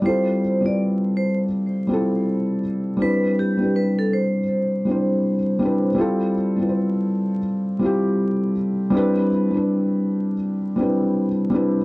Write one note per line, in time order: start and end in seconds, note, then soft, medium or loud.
0.00 0.39 G3 medium
0.00 0.40 C4 medium
0.00 0.27 D5 medium
0.05 0.40 E4 medium
0.05 0.41 F4 medium
0.05 0.42 A4 medium
0.05 0.62 C5 medium
0.61 1.43 G3 medium
0.61 1.44 C4 medium
0.61 1.45 E4 medium
0.65 1.45 F4 soft
0.65 1.46 B4 medium
0.65 0.78 D5 medium
1.17 1.37 C5 medium
1.87 2.60 G3 medium
1.87 2.61 C4 medium
1.87 2.62 E4 medium
1.92 2.62 F4 medium
1.92 2.63 A4 medium
2.97 3.35 G3 medium
2.97 3.35 C4 medium
2.97 3.36 D4 medium
3.02 3.37 E4 medium
3.02 3.35 B4 medium
3.02 3.38 B4 medium
3.39 3.72 G4 medium
3.57 4.39 G3 medium
3.57 4.40 C4 soft
3.57 4.41 D4 soft
3.62 4.42 E4 medium
3.62 4.43 B4 medium
3.76 3.96 B4 medium
3.99 4.11 A4 medium
4.13 5.94 C5 medium
4.85 5.35 G3 medium
4.85 5.36 C4 medium
4.85 5.37 D4 medium
4.90 5.37 E4 medium
4.90 5.38 C5 medium
5.59 5.86 G3 medium
5.59 5.87 C4 medium
5.59 5.88 D4 medium
5.64 5.89 E4 medium
5.64 5.89 B4 medium
5.95 6.32 G3 loud
5.95 6.32 C4 medium
5.95 6.33 E4 medium
5.99 6.34 F4 loud
5.99 6.35 A4 loud
6.56 7.37 G3 medium
6.56 7.38 C4 medium
6.56 7.39 E4 medium
6.61 7.40 F4 medium
6.61 6.65 B4 medium
6.69 7.43 C5 medium
7.79 8.52 G3 medium
7.79 8.53 C4 medium
7.79 8.54 E4 medium
7.84 8.55 F4 medium
7.84 8.55 G4 loud
8.90 9.28 G3 loud
8.90 9.28 C4 medium
8.90 9.29 D4 medium
8.95 9.30 E4 medium
8.95 9.31 B4 loud
9.51 10.32 G3 medium
9.51 10.33 C4 soft
9.51 10.34 D4 medium
9.55 10.35 E4 medium
9.55 10.35 B4 medium
10.76 11.27 G3 medium
10.76 11.27 C4 medium
10.76 11.28 D4 medium
10.81 11.29 E4 medium
10.81 11.30 B4 medium
11.50 11.78 G3 medium
11.50 11.79 C4 medium
11.50 11.80 D4 medium
11.54 11.80 E4 medium
11.54 11.81 B4 medium